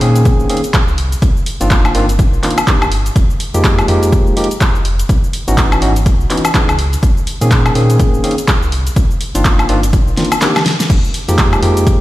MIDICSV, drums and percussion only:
0, 0, Header, 1, 2, 480
1, 0, Start_track
1, 0, Key_signature, -4, "minor"
1, 0, Tempo, 483871
1, 1212, Time_signature, 4, 2, 24, 8
1, 11910, End_track
2, 0, Start_track
2, 0, Title_t, "Drums"
2, 12, Note_on_c, 9, 46, 117
2, 111, Note_off_c, 9, 46, 0
2, 155, Note_on_c, 9, 42, 52
2, 155, Note_on_c, 9, 69, 66
2, 252, Note_off_c, 9, 42, 0
2, 252, Note_off_c, 9, 69, 0
2, 252, Note_on_c, 9, 36, 127
2, 252, Note_on_c, 9, 42, 64
2, 252, Note_on_c, 9, 69, 54
2, 351, Note_off_c, 9, 36, 0
2, 351, Note_off_c, 9, 42, 0
2, 351, Note_off_c, 9, 69, 0
2, 395, Note_on_c, 9, 69, 34
2, 491, Note_on_c, 9, 46, 111
2, 494, Note_off_c, 9, 69, 0
2, 563, Note_on_c, 9, 42, 64
2, 590, Note_off_c, 9, 46, 0
2, 635, Note_off_c, 9, 42, 0
2, 635, Note_on_c, 9, 42, 52
2, 635, Note_on_c, 9, 69, 68
2, 731, Note_off_c, 9, 42, 0
2, 731, Note_on_c, 9, 42, 66
2, 732, Note_off_c, 9, 69, 0
2, 732, Note_on_c, 9, 36, 113
2, 732, Note_on_c, 9, 69, 53
2, 734, Note_on_c, 9, 39, 118
2, 831, Note_off_c, 9, 36, 0
2, 831, Note_off_c, 9, 42, 0
2, 831, Note_off_c, 9, 69, 0
2, 833, Note_off_c, 9, 39, 0
2, 875, Note_on_c, 9, 69, 32
2, 972, Note_on_c, 9, 46, 111
2, 975, Note_off_c, 9, 69, 0
2, 1071, Note_off_c, 9, 46, 0
2, 1115, Note_on_c, 9, 42, 52
2, 1116, Note_on_c, 9, 69, 64
2, 1212, Note_off_c, 9, 42, 0
2, 1212, Note_on_c, 9, 36, 121
2, 1212, Note_on_c, 9, 42, 64
2, 1213, Note_off_c, 9, 69, 0
2, 1213, Note_on_c, 9, 69, 54
2, 1311, Note_off_c, 9, 36, 0
2, 1311, Note_off_c, 9, 42, 0
2, 1312, Note_off_c, 9, 69, 0
2, 1356, Note_on_c, 9, 69, 33
2, 1452, Note_on_c, 9, 46, 112
2, 1455, Note_off_c, 9, 69, 0
2, 1551, Note_off_c, 9, 46, 0
2, 1595, Note_on_c, 9, 42, 52
2, 1595, Note_on_c, 9, 69, 66
2, 1692, Note_off_c, 9, 42, 0
2, 1692, Note_on_c, 9, 36, 110
2, 1692, Note_on_c, 9, 42, 62
2, 1693, Note_off_c, 9, 69, 0
2, 1693, Note_on_c, 9, 69, 55
2, 1694, Note_on_c, 9, 39, 119
2, 1791, Note_off_c, 9, 36, 0
2, 1791, Note_off_c, 9, 42, 0
2, 1792, Note_off_c, 9, 69, 0
2, 1793, Note_off_c, 9, 39, 0
2, 1835, Note_on_c, 9, 76, 87
2, 1836, Note_on_c, 9, 69, 33
2, 1932, Note_on_c, 9, 46, 116
2, 1934, Note_off_c, 9, 76, 0
2, 1935, Note_off_c, 9, 69, 0
2, 2031, Note_off_c, 9, 46, 0
2, 2075, Note_on_c, 9, 42, 52
2, 2076, Note_on_c, 9, 69, 64
2, 2172, Note_on_c, 9, 36, 126
2, 2173, Note_off_c, 9, 42, 0
2, 2173, Note_off_c, 9, 69, 0
2, 2173, Note_on_c, 9, 42, 64
2, 2173, Note_on_c, 9, 69, 55
2, 2271, Note_off_c, 9, 36, 0
2, 2272, Note_off_c, 9, 42, 0
2, 2273, Note_off_c, 9, 69, 0
2, 2317, Note_on_c, 9, 69, 34
2, 2414, Note_on_c, 9, 46, 107
2, 2416, Note_off_c, 9, 69, 0
2, 2416, Note_on_c, 9, 39, 60
2, 2485, Note_on_c, 9, 42, 63
2, 2513, Note_off_c, 9, 46, 0
2, 2515, Note_off_c, 9, 39, 0
2, 2557, Note_off_c, 9, 42, 0
2, 2557, Note_on_c, 9, 42, 53
2, 2557, Note_on_c, 9, 69, 65
2, 2557, Note_on_c, 9, 76, 88
2, 2652, Note_on_c, 9, 36, 111
2, 2654, Note_off_c, 9, 42, 0
2, 2654, Note_off_c, 9, 69, 0
2, 2654, Note_on_c, 9, 42, 63
2, 2654, Note_on_c, 9, 69, 54
2, 2656, Note_off_c, 9, 76, 0
2, 2656, Note_on_c, 9, 39, 116
2, 2751, Note_off_c, 9, 36, 0
2, 2753, Note_off_c, 9, 42, 0
2, 2754, Note_off_c, 9, 69, 0
2, 2755, Note_off_c, 9, 39, 0
2, 2796, Note_on_c, 9, 76, 89
2, 2797, Note_on_c, 9, 69, 33
2, 2893, Note_on_c, 9, 46, 112
2, 2896, Note_off_c, 9, 69, 0
2, 2896, Note_off_c, 9, 76, 0
2, 2992, Note_off_c, 9, 46, 0
2, 3036, Note_on_c, 9, 42, 50
2, 3036, Note_on_c, 9, 69, 63
2, 3132, Note_on_c, 9, 36, 121
2, 3133, Note_off_c, 9, 42, 0
2, 3133, Note_on_c, 9, 42, 64
2, 3134, Note_off_c, 9, 69, 0
2, 3134, Note_on_c, 9, 69, 57
2, 3232, Note_off_c, 9, 36, 0
2, 3233, Note_off_c, 9, 42, 0
2, 3233, Note_off_c, 9, 69, 0
2, 3276, Note_on_c, 9, 69, 35
2, 3373, Note_on_c, 9, 46, 106
2, 3375, Note_off_c, 9, 69, 0
2, 3472, Note_off_c, 9, 46, 0
2, 3516, Note_on_c, 9, 42, 52
2, 3517, Note_on_c, 9, 69, 70
2, 3612, Note_on_c, 9, 36, 109
2, 3613, Note_off_c, 9, 42, 0
2, 3613, Note_off_c, 9, 69, 0
2, 3613, Note_on_c, 9, 42, 65
2, 3613, Note_on_c, 9, 69, 55
2, 3615, Note_on_c, 9, 39, 113
2, 3712, Note_off_c, 9, 36, 0
2, 3712, Note_off_c, 9, 42, 0
2, 3713, Note_off_c, 9, 69, 0
2, 3714, Note_off_c, 9, 39, 0
2, 3755, Note_on_c, 9, 76, 89
2, 3756, Note_on_c, 9, 69, 35
2, 3852, Note_on_c, 9, 46, 106
2, 3855, Note_off_c, 9, 69, 0
2, 3855, Note_off_c, 9, 76, 0
2, 3952, Note_off_c, 9, 46, 0
2, 3995, Note_on_c, 9, 42, 51
2, 3996, Note_on_c, 9, 69, 69
2, 4092, Note_on_c, 9, 36, 122
2, 4093, Note_off_c, 9, 42, 0
2, 4093, Note_off_c, 9, 69, 0
2, 4093, Note_on_c, 9, 42, 64
2, 4093, Note_on_c, 9, 69, 58
2, 4191, Note_off_c, 9, 36, 0
2, 4192, Note_off_c, 9, 42, 0
2, 4192, Note_off_c, 9, 69, 0
2, 4236, Note_on_c, 9, 69, 35
2, 4333, Note_on_c, 9, 46, 109
2, 4336, Note_off_c, 9, 69, 0
2, 4404, Note_on_c, 9, 42, 64
2, 4432, Note_off_c, 9, 46, 0
2, 4476, Note_off_c, 9, 42, 0
2, 4476, Note_on_c, 9, 42, 52
2, 4476, Note_on_c, 9, 69, 67
2, 4572, Note_off_c, 9, 42, 0
2, 4572, Note_on_c, 9, 36, 105
2, 4572, Note_on_c, 9, 42, 65
2, 4573, Note_off_c, 9, 69, 0
2, 4573, Note_on_c, 9, 69, 56
2, 4575, Note_on_c, 9, 39, 113
2, 4671, Note_off_c, 9, 36, 0
2, 4671, Note_off_c, 9, 42, 0
2, 4672, Note_off_c, 9, 69, 0
2, 4674, Note_off_c, 9, 39, 0
2, 4715, Note_on_c, 9, 69, 34
2, 4812, Note_on_c, 9, 46, 107
2, 4815, Note_off_c, 9, 69, 0
2, 4911, Note_off_c, 9, 46, 0
2, 4955, Note_on_c, 9, 42, 51
2, 4956, Note_on_c, 9, 69, 67
2, 5052, Note_on_c, 9, 36, 116
2, 5053, Note_off_c, 9, 42, 0
2, 5053, Note_off_c, 9, 69, 0
2, 5053, Note_on_c, 9, 42, 64
2, 5053, Note_on_c, 9, 69, 59
2, 5151, Note_off_c, 9, 36, 0
2, 5152, Note_off_c, 9, 42, 0
2, 5152, Note_off_c, 9, 69, 0
2, 5196, Note_on_c, 9, 69, 36
2, 5291, Note_on_c, 9, 46, 104
2, 5295, Note_off_c, 9, 69, 0
2, 5390, Note_off_c, 9, 46, 0
2, 5435, Note_on_c, 9, 42, 54
2, 5436, Note_on_c, 9, 69, 72
2, 5532, Note_off_c, 9, 42, 0
2, 5532, Note_on_c, 9, 36, 104
2, 5532, Note_on_c, 9, 42, 67
2, 5533, Note_off_c, 9, 69, 0
2, 5533, Note_on_c, 9, 69, 59
2, 5534, Note_on_c, 9, 39, 112
2, 5631, Note_off_c, 9, 36, 0
2, 5631, Note_off_c, 9, 42, 0
2, 5632, Note_off_c, 9, 69, 0
2, 5633, Note_off_c, 9, 39, 0
2, 5676, Note_on_c, 9, 69, 36
2, 5676, Note_on_c, 9, 76, 89
2, 5773, Note_on_c, 9, 46, 105
2, 5775, Note_off_c, 9, 76, 0
2, 5776, Note_off_c, 9, 69, 0
2, 5872, Note_off_c, 9, 46, 0
2, 5916, Note_on_c, 9, 42, 54
2, 5916, Note_on_c, 9, 69, 68
2, 6012, Note_off_c, 9, 42, 0
2, 6012, Note_on_c, 9, 36, 119
2, 6012, Note_on_c, 9, 42, 67
2, 6013, Note_off_c, 9, 69, 0
2, 6013, Note_on_c, 9, 69, 59
2, 6111, Note_off_c, 9, 36, 0
2, 6111, Note_off_c, 9, 42, 0
2, 6112, Note_off_c, 9, 69, 0
2, 6156, Note_on_c, 9, 69, 36
2, 6253, Note_on_c, 9, 46, 104
2, 6255, Note_off_c, 9, 69, 0
2, 6255, Note_on_c, 9, 39, 58
2, 6324, Note_on_c, 9, 42, 63
2, 6352, Note_off_c, 9, 46, 0
2, 6354, Note_off_c, 9, 39, 0
2, 6396, Note_off_c, 9, 42, 0
2, 6396, Note_on_c, 9, 42, 52
2, 6396, Note_on_c, 9, 69, 72
2, 6396, Note_on_c, 9, 76, 90
2, 6492, Note_off_c, 9, 42, 0
2, 6492, Note_on_c, 9, 36, 103
2, 6492, Note_on_c, 9, 42, 64
2, 6493, Note_off_c, 9, 69, 0
2, 6493, Note_on_c, 9, 69, 59
2, 6494, Note_on_c, 9, 39, 115
2, 6495, Note_off_c, 9, 76, 0
2, 6591, Note_off_c, 9, 36, 0
2, 6591, Note_off_c, 9, 42, 0
2, 6592, Note_off_c, 9, 69, 0
2, 6594, Note_off_c, 9, 39, 0
2, 6636, Note_on_c, 9, 76, 88
2, 6637, Note_on_c, 9, 69, 36
2, 6732, Note_on_c, 9, 46, 101
2, 6735, Note_off_c, 9, 76, 0
2, 6736, Note_off_c, 9, 69, 0
2, 6832, Note_off_c, 9, 46, 0
2, 6876, Note_on_c, 9, 42, 51
2, 6876, Note_on_c, 9, 69, 68
2, 6971, Note_on_c, 9, 36, 114
2, 6972, Note_off_c, 9, 42, 0
2, 6972, Note_on_c, 9, 42, 68
2, 6973, Note_off_c, 9, 69, 0
2, 6973, Note_on_c, 9, 69, 59
2, 7071, Note_off_c, 9, 36, 0
2, 7071, Note_off_c, 9, 42, 0
2, 7072, Note_off_c, 9, 69, 0
2, 7116, Note_on_c, 9, 69, 36
2, 7212, Note_on_c, 9, 46, 103
2, 7215, Note_off_c, 9, 69, 0
2, 7311, Note_off_c, 9, 46, 0
2, 7356, Note_on_c, 9, 42, 55
2, 7356, Note_on_c, 9, 69, 74
2, 7451, Note_on_c, 9, 36, 103
2, 7452, Note_off_c, 9, 42, 0
2, 7452, Note_on_c, 9, 42, 68
2, 7453, Note_off_c, 9, 69, 0
2, 7453, Note_on_c, 9, 69, 59
2, 7454, Note_on_c, 9, 39, 115
2, 7551, Note_off_c, 9, 36, 0
2, 7551, Note_off_c, 9, 42, 0
2, 7552, Note_off_c, 9, 69, 0
2, 7554, Note_off_c, 9, 39, 0
2, 7596, Note_on_c, 9, 69, 36
2, 7596, Note_on_c, 9, 76, 87
2, 7692, Note_on_c, 9, 46, 103
2, 7695, Note_off_c, 9, 69, 0
2, 7695, Note_off_c, 9, 76, 0
2, 7791, Note_off_c, 9, 46, 0
2, 7835, Note_on_c, 9, 42, 54
2, 7835, Note_on_c, 9, 69, 71
2, 7932, Note_off_c, 9, 42, 0
2, 7932, Note_on_c, 9, 36, 116
2, 7932, Note_on_c, 9, 42, 68
2, 7933, Note_off_c, 9, 69, 0
2, 7933, Note_on_c, 9, 69, 58
2, 8031, Note_off_c, 9, 36, 0
2, 8031, Note_off_c, 9, 42, 0
2, 8032, Note_off_c, 9, 69, 0
2, 8076, Note_on_c, 9, 69, 37
2, 8172, Note_on_c, 9, 46, 105
2, 8175, Note_off_c, 9, 69, 0
2, 8244, Note_on_c, 9, 42, 69
2, 8272, Note_off_c, 9, 46, 0
2, 8315, Note_off_c, 9, 42, 0
2, 8315, Note_on_c, 9, 42, 56
2, 8316, Note_on_c, 9, 69, 73
2, 8412, Note_off_c, 9, 42, 0
2, 8412, Note_on_c, 9, 36, 103
2, 8412, Note_on_c, 9, 42, 68
2, 8413, Note_off_c, 9, 69, 0
2, 8413, Note_on_c, 9, 69, 58
2, 8414, Note_on_c, 9, 39, 118
2, 8511, Note_off_c, 9, 36, 0
2, 8511, Note_off_c, 9, 42, 0
2, 8512, Note_off_c, 9, 69, 0
2, 8513, Note_off_c, 9, 39, 0
2, 8557, Note_on_c, 9, 69, 36
2, 8653, Note_on_c, 9, 46, 103
2, 8656, Note_off_c, 9, 69, 0
2, 8752, Note_off_c, 9, 46, 0
2, 8796, Note_on_c, 9, 42, 55
2, 8797, Note_on_c, 9, 69, 72
2, 8892, Note_on_c, 9, 36, 116
2, 8893, Note_off_c, 9, 42, 0
2, 8893, Note_off_c, 9, 69, 0
2, 8893, Note_on_c, 9, 42, 72
2, 8893, Note_on_c, 9, 69, 60
2, 8991, Note_off_c, 9, 36, 0
2, 8992, Note_off_c, 9, 42, 0
2, 8992, Note_off_c, 9, 69, 0
2, 9036, Note_on_c, 9, 69, 35
2, 9133, Note_on_c, 9, 46, 103
2, 9135, Note_off_c, 9, 69, 0
2, 9232, Note_off_c, 9, 46, 0
2, 9276, Note_on_c, 9, 42, 57
2, 9276, Note_on_c, 9, 69, 72
2, 9371, Note_on_c, 9, 36, 103
2, 9373, Note_off_c, 9, 42, 0
2, 9373, Note_on_c, 9, 42, 68
2, 9374, Note_off_c, 9, 69, 0
2, 9374, Note_on_c, 9, 69, 59
2, 9375, Note_on_c, 9, 39, 121
2, 9471, Note_off_c, 9, 36, 0
2, 9472, Note_off_c, 9, 42, 0
2, 9473, Note_off_c, 9, 69, 0
2, 9475, Note_off_c, 9, 39, 0
2, 9516, Note_on_c, 9, 69, 37
2, 9516, Note_on_c, 9, 76, 84
2, 9612, Note_on_c, 9, 46, 104
2, 9615, Note_off_c, 9, 69, 0
2, 9615, Note_off_c, 9, 76, 0
2, 9711, Note_off_c, 9, 46, 0
2, 9755, Note_on_c, 9, 42, 58
2, 9756, Note_on_c, 9, 69, 69
2, 9851, Note_on_c, 9, 36, 117
2, 9852, Note_off_c, 9, 42, 0
2, 9852, Note_off_c, 9, 69, 0
2, 9852, Note_on_c, 9, 42, 69
2, 9852, Note_on_c, 9, 69, 59
2, 9951, Note_off_c, 9, 36, 0
2, 9951, Note_off_c, 9, 42, 0
2, 9952, Note_off_c, 9, 69, 0
2, 9996, Note_on_c, 9, 69, 36
2, 10093, Note_on_c, 9, 38, 61
2, 10093, Note_on_c, 9, 46, 103
2, 10095, Note_off_c, 9, 69, 0
2, 10164, Note_on_c, 9, 42, 68
2, 10192, Note_off_c, 9, 38, 0
2, 10192, Note_off_c, 9, 46, 0
2, 10235, Note_off_c, 9, 42, 0
2, 10235, Note_on_c, 9, 42, 59
2, 10235, Note_on_c, 9, 76, 86
2, 10236, Note_on_c, 9, 69, 72
2, 10332, Note_off_c, 9, 42, 0
2, 10332, Note_on_c, 9, 38, 79
2, 10332, Note_on_c, 9, 42, 70
2, 10333, Note_off_c, 9, 69, 0
2, 10333, Note_on_c, 9, 69, 58
2, 10334, Note_off_c, 9, 76, 0
2, 10334, Note_on_c, 9, 39, 120
2, 10431, Note_off_c, 9, 38, 0
2, 10431, Note_off_c, 9, 42, 0
2, 10432, Note_off_c, 9, 69, 0
2, 10433, Note_off_c, 9, 39, 0
2, 10476, Note_on_c, 9, 38, 75
2, 10476, Note_on_c, 9, 76, 81
2, 10477, Note_on_c, 9, 69, 36
2, 10573, Note_off_c, 9, 38, 0
2, 10573, Note_on_c, 9, 38, 96
2, 10573, Note_on_c, 9, 46, 104
2, 10575, Note_off_c, 9, 76, 0
2, 10576, Note_off_c, 9, 69, 0
2, 10672, Note_off_c, 9, 38, 0
2, 10672, Note_off_c, 9, 46, 0
2, 10715, Note_on_c, 9, 38, 84
2, 10715, Note_on_c, 9, 42, 56
2, 10715, Note_on_c, 9, 69, 70
2, 10812, Note_off_c, 9, 42, 0
2, 10812, Note_on_c, 9, 36, 121
2, 10812, Note_on_c, 9, 42, 70
2, 10812, Note_on_c, 9, 49, 78
2, 10813, Note_off_c, 9, 69, 0
2, 10813, Note_on_c, 9, 69, 58
2, 10814, Note_off_c, 9, 38, 0
2, 10911, Note_off_c, 9, 36, 0
2, 10911, Note_off_c, 9, 42, 0
2, 10911, Note_off_c, 9, 49, 0
2, 10912, Note_off_c, 9, 69, 0
2, 10956, Note_on_c, 9, 69, 35
2, 11052, Note_on_c, 9, 46, 107
2, 11055, Note_off_c, 9, 69, 0
2, 11152, Note_off_c, 9, 46, 0
2, 11196, Note_on_c, 9, 42, 57
2, 11196, Note_on_c, 9, 69, 71
2, 11292, Note_off_c, 9, 42, 0
2, 11292, Note_on_c, 9, 36, 106
2, 11292, Note_on_c, 9, 42, 69
2, 11293, Note_off_c, 9, 69, 0
2, 11293, Note_on_c, 9, 69, 56
2, 11294, Note_on_c, 9, 39, 124
2, 11391, Note_off_c, 9, 36, 0
2, 11391, Note_off_c, 9, 42, 0
2, 11392, Note_off_c, 9, 69, 0
2, 11393, Note_off_c, 9, 39, 0
2, 11436, Note_on_c, 9, 69, 35
2, 11436, Note_on_c, 9, 76, 82
2, 11532, Note_on_c, 9, 46, 112
2, 11535, Note_off_c, 9, 76, 0
2, 11536, Note_off_c, 9, 69, 0
2, 11632, Note_off_c, 9, 46, 0
2, 11676, Note_on_c, 9, 42, 57
2, 11676, Note_on_c, 9, 69, 68
2, 11772, Note_off_c, 9, 42, 0
2, 11772, Note_on_c, 9, 36, 125
2, 11772, Note_on_c, 9, 42, 70
2, 11773, Note_off_c, 9, 69, 0
2, 11773, Note_on_c, 9, 69, 58
2, 11871, Note_off_c, 9, 36, 0
2, 11871, Note_off_c, 9, 42, 0
2, 11872, Note_off_c, 9, 69, 0
2, 11910, End_track
0, 0, End_of_file